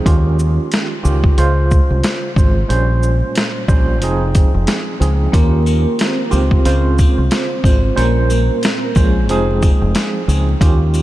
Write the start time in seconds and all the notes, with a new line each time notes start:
0.05 D#2 D#3 C#4 F4 G4, kick, closed hi-hat
0.39 shaker
0.72 snare, closed hi-hat
1.03 C#2 D#3 C#4 F4 G4, shaker
1.24 kick
1.37 C#2 C#3 G#3 F4 C5, closed hi-hat
1.71 kick, shaker
1.90 C2
2.03 snare, closed hi-hat
2.36 G#1 C#3 G#3 F4 C5, kick, shaker
2.68 A#1 A#2 G3 C#4 C5, closed hi-hat
3.03 shaker
3.35 snare, closed hi-hat
3.68 A#1 A#2 G3 C#4 C5, kick, shaker
4.02 F1 F3 C4 D#4 G#4, closed hi-hat
4.35 kick, closed hi-hat, shaker
4.54 F1
4.67 snare, closed hi-hat
5.00 C#2 F3 C4 D#4 G#4, closed hi-hat, shaker
5.32 D#2 D#3 A#3 C#4 F4 G4 A#4, kick, closed hi-hat, sleigh bells
5.66 A#3 A#4, shaker, sleigh bells
5.99 C4 C5, snare, closed hi-hat, sleigh bells
6.17 A#3 A#4
6.30 C#2 C#3 D#3 C4 F4 G4 C5, shaker, sleigh bells
6.51 kick
6.65 C#2 C#3 G#3 F4 C5, closed hi-hat, sleigh bells
6.98 kick, shaker, sleigh bells
7.18 C2
7.31 snare, closed hi-hat, sleigh bells
7.64 G#1 C#3 G#3 F4 C5, kick, shaker, sleigh bells
7.95 A#1 A#2 G3 A#3 C#4 A#4 C5, closed hi-hat, sleigh bells
8.29 A#3 A#4, shaker, sleigh bells
8.62 C4 C5, snare, closed hi-hat, sleigh bells
8.83 A#3 A#4
8.95 A#1 A#2 F3 G#3 C#4 G#4 C5, kick, shaker, sleigh bells
9.29 F1 F3 C4 D#4 G#4, closed hi-hat, sleigh bells
9.62 kick, shaker, sleigh bells
9.82 F1
9.95 snare, closed hi-hat, sleigh bells
10.27 C#2 F3 C4 D#4 G#4, shaker, sleigh bells
10.60 D#2 D#3 C#4 F4 G4, kick, closed hi-hat, sleigh bells
10.94 shaker, sleigh bells